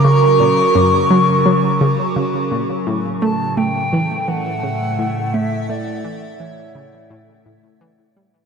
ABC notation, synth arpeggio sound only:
X:1
M:4/4
L:1/16
Q:1/4=85
K:Amix
V:1 name="Synth arpeggio sound" clef=bass
C, z ^A,,2 F,,2 F,2 F, z C,2 C, z A,,2 | A,,2 A,2 A, z E,2 E, z C,2 A,,2 A,2 | A, z E,2 E, z C,2 A,,2 A,,2 E, z G,2 |]